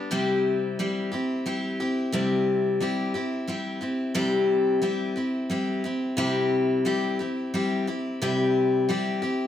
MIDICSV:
0, 0, Header, 1, 2, 480
1, 0, Start_track
1, 0, Tempo, 674157
1, 83, Time_signature, 3, 2, 24, 8
1, 6743, End_track
2, 0, Start_track
2, 0, Title_t, "Steel-string acoustic guitar"
2, 0, Program_c, 0, 25
2, 0, Note_on_c, 0, 55, 42
2, 0, Note_on_c, 0, 59, 48
2, 0, Note_on_c, 0, 62, 50
2, 0, Note_on_c, 0, 67, 54
2, 72, Note_off_c, 0, 55, 0
2, 76, Note_off_c, 0, 67, 0
2, 76, Note_on_c, 0, 48, 86
2, 77, Note_off_c, 0, 59, 0
2, 80, Note_on_c, 0, 60, 84
2, 81, Note_off_c, 0, 62, 0
2, 81, Note_on_c, 0, 55, 91
2, 84, Note_on_c, 0, 67, 93
2, 86, Note_on_c, 0, 64, 89
2, 560, Note_off_c, 0, 48, 0
2, 560, Note_off_c, 0, 55, 0
2, 563, Note_on_c, 0, 55, 72
2, 564, Note_off_c, 0, 60, 0
2, 567, Note_on_c, 0, 60, 70
2, 568, Note_off_c, 0, 64, 0
2, 571, Note_off_c, 0, 67, 0
2, 571, Note_on_c, 0, 64, 74
2, 574, Note_on_c, 0, 67, 64
2, 786, Note_off_c, 0, 67, 0
2, 795, Note_off_c, 0, 64, 0
2, 795, Note_on_c, 0, 67, 55
2, 802, Note_off_c, 0, 60, 0
2, 803, Note_off_c, 0, 55, 0
2, 804, Note_on_c, 0, 64, 48
2, 811, Note_on_c, 0, 60, 48
2, 1033, Note_off_c, 0, 60, 0
2, 1033, Note_off_c, 0, 64, 0
2, 1037, Note_on_c, 0, 55, 64
2, 1039, Note_off_c, 0, 67, 0
2, 1042, Note_on_c, 0, 60, 68
2, 1042, Note_on_c, 0, 64, 65
2, 1047, Note_on_c, 0, 67, 81
2, 1273, Note_off_c, 0, 67, 0
2, 1276, Note_off_c, 0, 64, 0
2, 1280, Note_off_c, 0, 55, 0
2, 1281, Note_on_c, 0, 67, 56
2, 1283, Note_off_c, 0, 60, 0
2, 1285, Note_on_c, 0, 64, 54
2, 1295, Note_on_c, 0, 60, 46
2, 1511, Note_off_c, 0, 60, 0
2, 1513, Note_on_c, 0, 48, 83
2, 1514, Note_off_c, 0, 64, 0
2, 1514, Note_off_c, 0, 67, 0
2, 1517, Note_on_c, 0, 55, 86
2, 1519, Note_on_c, 0, 60, 102
2, 1522, Note_on_c, 0, 64, 92
2, 1523, Note_on_c, 0, 67, 89
2, 1988, Note_off_c, 0, 55, 0
2, 1994, Note_off_c, 0, 60, 0
2, 1997, Note_on_c, 0, 55, 70
2, 1998, Note_off_c, 0, 48, 0
2, 2000, Note_off_c, 0, 64, 0
2, 2003, Note_off_c, 0, 67, 0
2, 2003, Note_on_c, 0, 60, 70
2, 2008, Note_on_c, 0, 64, 71
2, 2011, Note_on_c, 0, 67, 72
2, 2228, Note_off_c, 0, 67, 0
2, 2236, Note_off_c, 0, 64, 0
2, 2236, Note_on_c, 0, 67, 52
2, 2240, Note_off_c, 0, 55, 0
2, 2243, Note_off_c, 0, 60, 0
2, 2244, Note_on_c, 0, 64, 53
2, 2252, Note_on_c, 0, 60, 42
2, 2470, Note_off_c, 0, 60, 0
2, 2474, Note_on_c, 0, 55, 60
2, 2478, Note_off_c, 0, 64, 0
2, 2479, Note_on_c, 0, 60, 67
2, 2480, Note_off_c, 0, 67, 0
2, 2486, Note_on_c, 0, 64, 67
2, 2488, Note_on_c, 0, 67, 69
2, 2703, Note_off_c, 0, 67, 0
2, 2710, Note_off_c, 0, 64, 0
2, 2711, Note_on_c, 0, 67, 51
2, 2716, Note_off_c, 0, 60, 0
2, 2719, Note_off_c, 0, 55, 0
2, 2719, Note_on_c, 0, 64, 53
2, 2725, Note_on_c, 0, 60, 46
2, 2947, Note_off_c, 0, 60, 0
2, 2947, Note_off_c, 0, 64, 0
2, 2949, Note_off_c, 0, 67, 0
2, 2951, Note_on_c, 0, 48, 84
2, 2952, Note_on_c, 0, 55, 95
2, 2956, Note_on_c, 0, 60, 94
2, 2956, Note_on_c, 0, 64, 100
2, 2958, Note_on_c, 0, 67, 97
2, 3426, Note_off_c, 0, 55, 0
2, 3429, Note_on_c, 0, 55, 67
2, 3431, Note_off_c, 0, 60, 0
2, 3434, Note_off_c, 0, 64, 0
2, 3434, Note_on_c, 0, 60, 75
2, 3437, Note_off_c, 0, 67, 0
2, 3437, Note_on_c, 0, 64, 77
2, 3438, Note_off_c, 0, 48, 0
2, 3440, Note_on_c, 0, 67, 66
2, 3663, Note_off_c, 0, 67, 0
2, 3671, Note_off_c, 0, 64, 0
2, 3672, Note_on_c, 0, 67, 49
2, 3676, Note_off_c, 0, 60, 0
2, 3677, Note_off_c, 0, 55, 0
2, 3680, Note_on_c, 0, 64, 45
2, 3684, Note_on_c, 0, 60, 42
2, 3912, Note_off_c, 0, 64, 0
2, 3913, Note_off_c, 0, 60, 0
2, 3913, Note_on_c, 0, 55, 74
2, 3918, Note_off_c, 0, 67, 0
2, 3921, Note_on_c, 0, 60, 70
2, 3921, Note_on_c, 0, 64, 76
2, 3927, Note_on_c, 0, 67, 69
2, 4149, Note_off_c, 0, 67, 0
2, 4157, Note_on_c, 0, 67, 62
2, 4158, Note_off_c, 0, 55, 0
2, 4159, Note_off_c, 0, 64, 0
2, 4163, Note_off_c, 0, 60, 0
2, 4167, Note_on_c, 0, 64, 55
2, 4173, Note_on_c, 0, 60, 49
2, 4390, Note_off_c, 0, 60, 0
2, 4391, Note_off_c, 0, 64, 0
2, 4391, Note_on_c, 0, 48, 89
2, 4393, Note_off_c, 0, 67, 0
2, 4393, Note_on_c, 0, 55, 83
2, 4399, Note_on_c, 0, 60, 108
2, 4399, Note_on_c, 0, 64, 102
2, 4402, Note_on_c, 0, 67, 101
2, 4868, Note_off_c, 0, 55, 0
2, 4870, Note_off_c, 0, 60, 0
2, 4876, Note_off_c, 0, 64, 0
2, 4876, Note_on_c, 0, 55, 68
2, 4877, Note_off_c, 0, 48, 0
2, 4879, Note_off_c, 0, 67, 0
2, 4879, Note_on_c, 0, 60, 65
2, 4884, Note_on_c, 0, 64, 79
2, 4887, Note_on_c, 0, 67, 83
2, 5111, Note_off_c, 0, 67, 0
2, 5120, Note_off_c, 0, 55, 0
2, 5120, Note_off_c, 0, 64, 0
2, 5120, Note_on_c, 0, 67, 52
2, 5121, Note_off_c, 0, 60, 0
2, 5128, Note_on_c, 0, 64, 46
2, 5137, Note_on_c, 0, 60, 40
2, 5359, Note_off_c, 0, 60, 0
2, 5362, Note_off_c, 0, 67, 0
2, 5366, Note_off_c, 0, 64, 0
2, 5367, Note_on_c, 0, 55, 75
2, 5368, Note_on_c, 0, 60, 70
2, 5374, Note_on_c, 0, 64, 74
2, 5375, Note_on_c, 0, 67, 74
2, 5598, Note_off_c, 0, 67, 0
2, 5602, Note_off_c, 0, 64, 0
2, 5605, Note_off_c, 0, 55, 0
2, 5606, Note_off_c, 0, 60, 0
2, 5606, Note_on_c, 0, 67, 55
2, 5611, Note_on_c, 0, 64, 54
2, 5617, Note_on_c, 0, 60, 41
2, 5844, Note_off_c, 0, 60, 0
2, 5845, Note_off_c, 0, 67, 0
2, 5847, Note_off_c, 0, 64, 0
2, 5850, Note_on_c, 0, 48, 82
2, 5851, Note_on_c, 0, 55, 92
2, 5853, Note_on_c, 0, 60, 86
2, 5855, Note_on_c, 0, 64, 98
2, 5857, Note_on_c, 0, 67, 97
2, 6319, Note_off_c, 0, 55, 0
2, 6323, Note_off_c, 0, 60, 0
2, 6326, Note_off_c, 0, 48, 0
2, 6326, Note_off_c, 0, 64, 0
2, 6327, Note_on_c, 0, 55, 79
2, 6330, Note_off_c, 0, 67, 0
2, 6331, Note_on_c, 0, 60, 71
2, 6335, Note_on_c, 0, 64, 69
2, 6339, Note_on_c, 0, 67, 82
2, 6555, Note_off_c, 0, 67, 0
2, 6563, Note_off_c, 0, 64, 0
2, 6564, Note_on_c, 0, 67, 59
2, 6565, Note_off_c, 0, 55, 0
2, 6567, Note_off_c, 0, 60, 0
2, 6572, Note_on_c, 0, 64, 46
2, 6577, Note_on_c, 0, 60, 42
2, 6743, Note_off_c, 0, 60, 0
2, 6743, Note_off_c, 0, 64, 0
2, 6743, Note_off_c, 0, 67, 0
2, 6743, End_track
0, 0, End_of_file